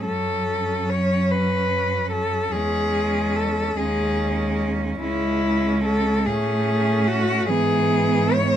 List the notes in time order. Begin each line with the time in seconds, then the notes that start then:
0.05 F#2 F#3 C#4 A4
0.90 C#5
1.31 B4
2.12 A4
2.52 E2 G#3 C#4 G#4
3.36 A4
3.77 D#2 G#3 C#4 G#4
5.01 C#2 G#3 C#4 E4
5.85 A4
6.26 A2 A3 C#4 G#4
7.08 F#4
7.48 G#2 E3 B3 G#4
8.34 C#5